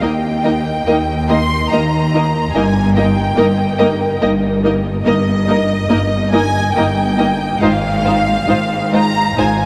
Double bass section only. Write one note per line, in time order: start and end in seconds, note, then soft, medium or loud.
0.00 0.76 D#2 medium
0.85 1.61 D#2 medium
1.70 2.44 D#2 medium
2.53 3.26 G1 medium
3.35 4.10 G1 medium
4.20 4.95 G1 medium
5.05 5.79 G1 medium
5.90 6.65 G1 medium
6.75 7.50 G1 medium
7.60 8.38 G#1 medium
8.48 9.27 G#1 medium
9.37 9.66 G#1 medium